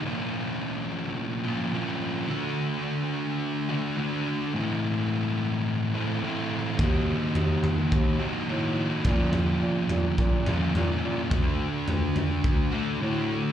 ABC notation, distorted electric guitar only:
X:1
M:4/4
L:1/8
Q:1/4=106
K:Bblyd
V:1 name="Distorted electric guitar"
[B,,F,B,_DF]4- [B,,F,B,DF] [B,,F,B,DF] [B,,F,B,DF]2 | [D,A,D^F]4- [D,A,DF] [D,A,DF] [D,A,DF]2 | [A,,E,A,CE]4- [A,,E,A,CE] [A,,E,A,CE] [A,,E,A,CE]2 | [_E,B,_E_G]4- [E,B,EG] [E,B,EG] [E,B,EG]2 |
[B,,F,B,_DF]4- [B,,F,B,DF] [B,,F,B,DF] [B,,F,B,DF]2 | [D,A,D^F]4- [D,A,DF] [D,A,DF] [D,A,DF]2 |]